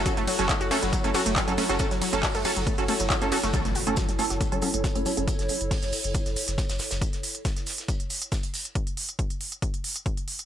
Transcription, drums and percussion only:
0.06 kick loud
0.06 closed hi-hat medium
0.06 ride medium
0.06 shaker medium
0.17 snare soft
0.17 closed hi-hat soft
0.27 open hi-hat loud
0.27 ride medium
0.27 shaker medium
0.39 closed hi-hat medium
0.49 kick loud
0.49 snare loud
0.49 clap loud
0.49 closed hi-hat medium
0.49 ride medium
0.49 shaker medium
0.60 snare soft
0.60 closed hi-hat medium
0.71 snare medium
0.71 open hi-hat medium
0.71 ride medium
0.71 shaker medium
0.83 snare soft
0.83 closed hi-hat medium
0.93 kick loud
0.93 closed hi-hat medium
0.93 ride medium
0.93 shaker medium
1.04 closed hi-hat medium
1.14 open hi-hat loud
1.14 ride medium
1.14 shaker medium
1.26 closed hi-hat medium
1.36 kick loud
1.36 snare loud
1.36 clap loud
1.36 closed hi-hat medium
1.36 ride medium
1.36 shaker medium
1.48 closed hi-hat medium
1.48 closed hi-hat soft
1.58 open hi-hat medium
1.58 ride medium
1.58 shaker medium
1.70 closed hi-hat medium
1.79 kick loud
1.79 closed hi-hat medium
1.79 ride medium
1.79 shaker medium
1.91 snare medium
1.91 closed hi-hat medium
2.02 open hi-hat loud
2.02 ride medium
2.02 shaker medium
2.13 closed hi-hat medium
2.23 kick loud
2.23 snare loud
2.23 clap loud
2.23 closed hi-hat medium
2.23 open hi-hat medium
2.23 ride medium
2.35 snare medium
2.35 closed hi-hat medium
2.45 open hi-hat medium
2.45 ride medium
2.45 shaker medium
2.56 closed hi-hat medium
2.67 kick loud
2.67 closed hi-hat medium
2.67 ride medium
2.78 closed hi-hat medium
2.88 open hi-hat loud
2.88 ride medium
3.00 closed hi-hat medium
3.10 kick loud
3.10 snare loud
3.10 clap loud
3.10 closed hi-hat medium
3.10 ride medium
3.10 shaker medium
3.22 snare soft
3.22 closed hi-hat medium
3.32 snare soft
3.32 open hi-hat medium
3.32 ride medium
3.32 shaker medium
3.43 snare soft
3.43 closed hi-hat medium
3.54 kick loud
3.54 closed hi-hat medium
3.54 shaker medium
3.65 snare soft
3.65 closed hi-hat medium
3.75 open hi-hat loud
3.75 shaker medium
3.87 closed hi-hat medium
3.97 kick loud
3.97 snare loud
3.97 closed hi-hat medium
3.97 shaker medium
4.08 snare soft
4.08 closed hi-hat medium
4.18 snare soft
4.18 open hi-hat medium
4.18 shaker medium
4.30 snare soft
4.30 closed hi-hat medium
4.41 kick loud
4.41 closed hi-hat medium
4.41 shaker medium
4.52 closed hi-hat medium
4.62 open hi-hat loud
4.62 shaker medium
4.74 closed hi-hat medium
4.84 kick loud
4.84 snare loud
4.84 closed hi-hat medium
4.84 shaker medium
4.95 closed hi-hat soft
4.95 closed hi-hat medium
5.06 open hi-hat medium
5.06 shaker medium
5.17 closed hi-hat medium
5.28 kick loud
5.28 closed hi-hat medium
5.28 shaker medium
5.39 snare soft
5.39 closed hi-hat medium
5.49 open hi-hat loud
5.49 shaker medium
5.61 closed hi-hat medium
5.71 kick loud
5.71 snare loud
5.71 closed hi-hat medium
5.71 open hi-hat medium
5.82 snare medium
5.82 closed hi-hat medium
5.92 open hi-hat loud
5.92 shaker medium
6.04 closed hi-hat medium
6.15 kick loud
6.15 closed hi-hat medium
6.15 shaker medium
6.26 snare soft
6.26 closed hi-hat medium
6.36 open hi-hat loud
6.36 shaker medium
6.47 snare soft
6.47 closed hi-hat medium
6.58 kick loud
6.58 snare loud
6.58 closed hi-hat medium
6.58 shaker medium
6.69 snare loud
6.69 closed hi-hat medium
6.69 shaker medium
6.79 snare loud
6.79 open hi-hat loud
6.79 shaker medium
6.91 snare loud
6.91 closed hi-hat medium
6.91 shaker medium
7.02 kick loud
7.02 closed hi-hat medium
7.02 shaker medium
7.13 snare soft
7.13 closed hi-hat soft
7.23 open hi-hat loud
7.23 shaker medium
7.35 closed hi-hat medium
7.45 kick loud
7.45 snare loud
7.45 closed hi-hat medium
7.45 shaker medium
7.56 snare soft
7.56 closed hi-hat medium
7.66 snare soft
7.66 open hi-hat loud
7.66 shaker medium
7.78 snare soft
7.78 closed hi-hat medium
7.88 kick loud
7.88 closed hi-hat medium
7.88 shaker medium
8.00 closed hi-hat medium
8.10 open hi-hat loud
8.10 shaker medium
8.22 closed hi-hat medium
8.32 kick loud
8.32 snare loud
8.32 closed hi-hat medium
8.32 shaker medium
8.43 closed hi-hat soft
8.43 closed hi-hat medium
8.54 open hi-hat medium
8.54 shaker medium
8.65 closed hi-hat medium
8.75 kick loud
8.75 closed hi-hat medium
8.87 closed hi-hat soft
8.97 open hi-hat loud
9.09 closed hi-hat soft
9.19 kick loud
9.19 closed hi-hat medium
9.30 closed hi-hat medium
9.41 open hi-hat medium
9.52 closed hi-hat medium
9.62 kick loud
9.62 closed hi-hat medium
9.74 closed hi-hat medium
9.84 open hi-hat loud
9.96 closed hi-hat medium
10.06 kick loud
10.06 closed hi-hat soft
10.17 closed hi-hat medium
10.28 open hi-hat medium
10.39 closed hi-hat medium

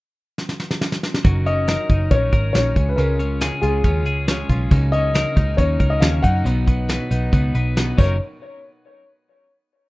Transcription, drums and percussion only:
0.38 snare medium
0.49 snare medium
0.60 snare medium
0.71 snare medium
0.81 snare medium
0.92 snare medium
1.03 snare medium
1.14 snare medium
1.25 kick loud
1.25 closed hi-hat medium
1.46 closed hi-hat medium
1.68 snare loud
1.68 closed hi-hat medium
1.90 kick medium
1.90 closed hi-hat medium
2.11 kick medium
2.11 closed hi-hat medium
2.33 kick medium
2.33 closed hi-hat medium
2.55 snare loud
2.55 closed hi-hat medium
2.76 kick medium
2.76 closed hi-hat medium
2.98 closed hi-hat medium
3.19 closed hi-hat medium
3.41 snare loud
3.41 closed hi-hat medium
3.63 closed hi-hat medium
3.84 kick medium
3.84 closed hi-hat medium
4.06 closed hi-hat medium
4.28 snare medium
4.28 closed hi-hat medium
4.50 kick medium
4.50 closed hi-hat medium
4.71 kick loud
4.71 closed hi-hat medium
4.93 closed hi-hat medium
5.15 snare loud
5.15 closed hi-hat medium
5.37 kick medium
5.37 closed hi-hat medium
5.58 kick medium
5.58 closed hi-hat medium
5.80 kick medium
5.80 closed hi-hat medium
6.02 snare loud
6.02 closed hi-hat medium
6.24 kick medium
6.24 closed hi-hat medium
6.46 closed hi-hat medium
6.67 kick medium
6.67 closed hi-hat medium
6.89 snare loud
6.89 closed hi-hat medium
7.11 closed hi-hat medium
7.33 kick medium
7.33 closed hi-hat medium
7.55 closed hi-hat medium
7.77 snare loud
7.77 closed hi-hat medium
7.98 kick medium
7.98 crash medium

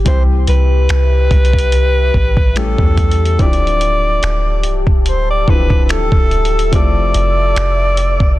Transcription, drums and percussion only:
0.06 kick loud
0.06 closed hi-hat medium
0.47 closed hi-hat medium
0.89 finger snap loud
0.89 closed hi-hat medium
1.31 kick medium
1.31 closed hi-hat soft
1.45 closed hi-hat medium
1.53 kick medium
1.59 closed hi-hat medium
1.72 closed hi-hat medium
2.14 kick medium
2.37 kick medium
2.56 finger snap loud
2.56 closed hi-hat medium
2.78 kick medium
2.97 kick medium
2.97 closed hi-hat medium
3.11 closed hi-hat soft
3.25 closed hi-hat soft
3.39 kick loud
3.39 closed hi-hat soft
3.53 closed hi-hat soft
3.67 closed hi-hat soft
3.81 closed hi-hat medium
4.23 finger snap loud
4.23 closed hi-hat medium
4.63 closed hi-hat medium
4.87 kick medium
5.06 closed hi-hat medium
5.48 kick medium
5.70 kick medium
5.89 finger snap medium
5.89 closed hi-hat medium
6.12 kick medium
6.31 closed hi-hat soft
6.45 closed hi-hat soft
6.59 closed hi-hat medium
6.73 kick loud
6.73 closed hi-hat medium
7.14 closed hi-hat medium
7.56 finger snap loud
7.56 closed hi-hat medium
7.97 closed hi-hat medium
8.20 kick loud

